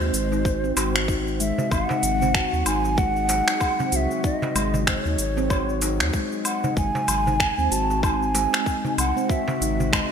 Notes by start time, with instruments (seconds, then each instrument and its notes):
Already playing: ambient pad G#3 C4 F#4, singing bowl F#4, bansuri C5
0.00 analog synth bass D#2, shaker
0.13 analog synth bass G#1, open hi-hat, shaker
0.32 handpan D#4, darbuka ka, darbuka tek, shaker
0.45 kick, shaker
0.64 handpan C4, shaker
0.77 analog synth bass G#1, handpan F#4, open hi-hat, darbuka tek, low woodblock, shaker
0.96 finger snap, shaker
1.08 handpan D#4, kick, shaker
1.28 shaker
1.40 handpan G#3, bansuri E5, open hi-hat, shaker
1.58 darbuka ka, darbuka dum, shaker
1.71 analog synth bass G#1, ambient pad F#3 G#4, bansuri F#5, kick, low woodblock, shaker
1.89 handpan D#4, darbuka tek, darbuka dum, shaker
2.03 analog synth bass G#1, open hi-hat, shaker
2.22 handpan C4, darbuka dum, shaker
2.35 handpan F#4, finger snap, kick, shaker
2.53 analog synth bass D#2, shaker
2.66 analog synth bass G#1, handpan D#4, bansuri G#5, open hi-hat, low woodblock, shaker
2.85 darbuka tek, shaker
2.98 handpan G#3, bansuri F#5, kick, shaker
3.16 shaker
3.29 open hi-hat, darbuka ka, darbuka tek, shaker
3.48 handpan D#4, finger snap, darbuka ka, shaker
3.60 kick, low woodblock, shaker
3.79 handpan C4, darbuka dum, shaker
3.92 analog synth bass C2, handpan F#4, bansuri E5 F#5, open hi-hat, shaker
4.11 shaker
4.24 handpan D#4, bansuri D#5, kick, shaker
4.42 darbuka tek, darbuka dum, shaker
4.55 analog synth bass G#1, handpan G#3, open hi-hat, low woodblock, shaker
4.74 darbuka dum, shaker
4.87 bansuri C5, finger snap, kick, shaker
5.00 bansuri C#5
5.06 analog synth bass D#2, handpan D#4, shaker
5.18 analog synth bass G#1, open hi-hat, shaker
5.37 handpan C4, darbuka ka, darbuka tek, shaker
5.50 handpan F#4, kick, low woodblock, shaker
5.69 shaker
5.82 handpan D#4, open hi-hat, darbuka tek, shaker
6.00 analog synth bass D#2, finger snap, shaker
6.13 handpan G#3, kick, shaker
6.32 shaker
6.45 bansuri F#5, open hi-hat, low woodblock, shaker
6.64 handpan D#4, darbuka ka, darbuka dum, shaker
6.77 analog synth bass G#1, handpan G#3, ambient pad G#3 C4 F#4, bansuri G#5, kick, shaker
6.95 darbuka tek, darbuka dum, shaker
7.08 analog synth bass G#1, open hi-hat, low woodblock, shaker
7.27 handpan D#4, darbuka dum, shaker
7.40 finger snap, kick, shaker
7.58 analog synth bass D#2, handpan C4, shaker
7.71 analog synth bass G#1, handpan F#4, bansuri A5, open hi-hat, shaker
7.90 darbuka tek, shaker
8.03 handpan D#4, bansuri A5, kick, low woodblock, shaker
8.08 bansuri G#5
8.23 shaker
8.35 handpan G#3, open hi-hat, darbuka ka, darbuka tek, shaker
8.53 finger snap, darbuka ka, shaker
8.66 kick, shaker
8.85 handpan D#4, darbuka dum, shaker
8.98 analog synth bass C2, bansuri F#5, open hi-hat, low woodblock, shaker
9.17 handpan C4, shaker
9.29 handpan F#4, bansuri E5, kick, shaker
9.48 darbuka tek, darbuka dum, shaker
9.61 analog synth bass G#1, handpan D#4, open hi-hat, shaker
9.80 darbuka dum, shaker
9.93 handpan G#3, bansuri D#5, finger snap, kick, low woodblock, shaker